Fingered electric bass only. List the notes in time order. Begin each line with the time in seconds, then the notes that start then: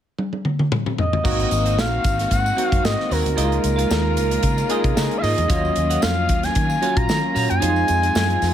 1.25 G#1
1.52 G#1
1.78 A#1
2.05 G#1
2.31 G#2
2.72 F#2
2.84 G#2
3.11 D#2
3.25 D2
3.38 C#2
3.64 C#2
3.91 D#2
4.17 C#2
4.43 C#3
4.84 C3
4.97 C#3
5.23 G#2
5.38 E2
5.50 D#2
5.77 D#2
6.03 F2
6.29 D#2
6.56 D#3
6.97 A#2
7.10 D#3
7.36 A#2
7.51 F#2
7.63 F2
7.89 F2
8.15 F#2
8.42 F2